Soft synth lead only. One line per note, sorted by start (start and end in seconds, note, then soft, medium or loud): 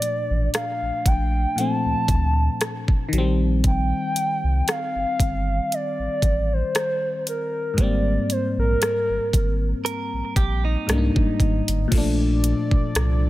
0.00 0.51 D5 loud
0.55 1.08 F5 loud
1.07 1.60 G5 loud
1.58 3.13 A5 loud
3.66 4.71 G5 loud
4.70 5.75 F5 loud
5.74 6.54 D5 loud
6.53 7.27 C5 loud
7.28 7.81 A#4 medium
7.80 8.33 D5 loud
8.32 8.59 C5 medium
8.59 10.10 A#4 medium